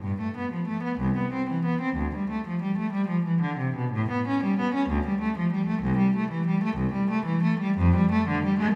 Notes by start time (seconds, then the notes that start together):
0.02 G2
0.20 A3
0.37 B3
0.52 F3
0.68 A3
0.83 B3
0.99 C2
1.17 B3
1.33 C4
1.50 E3
1.65 B3
1.81 C4
1.96 D2
2.16 G3
2.30 A3
2.47 F3
2.62 G3
2.78 A3
2.93 G3
3.08 F3
3.25 E3
3.42 D3
3.58 C3
3.76 B2
3.93 A2
4.11 B3
4.27 C#4
4.43 G3
4.60 B3
4.74 C#4
4.89 D2
5.07 G3
5.21 A3
5.38 F3
5.53 G3
5.67 A3
5.83 C2
5.98 G3
6.16 A3
6.31 E3
6.47 G3
6.64 A3
6.77 C2
6.93 G3
7.11 A3
7.26 E3
7.43 A3
7.60 G3
7.78 F2
7.96 G3
8.12 A3
8.29 D3
8.45 G3
8.59 A3